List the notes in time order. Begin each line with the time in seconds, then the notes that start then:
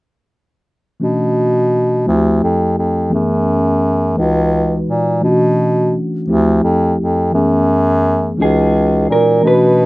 1.00 B2 E3 A3 C#4 D4 F#4
2.06 D2 F3 A3 C4 E4 F4
2.15 G4
2.43 F2
2.79 F2
3.10 E3 A3 B3 C#4 G#4
3.14 F#2
4.16 C#2 E3 G#3 D#4 F#4 B4
4.89 A#2
5.21 B2 E3 A3 C#4 D4 F4
5.31 F#4
6.27 D2 F3 A3 C4 E4 G4
6.64 F2
6.99 F2
7.32 F#2 E3 G#3 B3 C#4 G#4
7.39 A3
8.37 C#2 E3 G#3 C#4 D#4 F#4
8.42 G#4
9.10 A#2 A#4
9.42 B2 E3 A3 C#4 D4 F#4
9.47 B4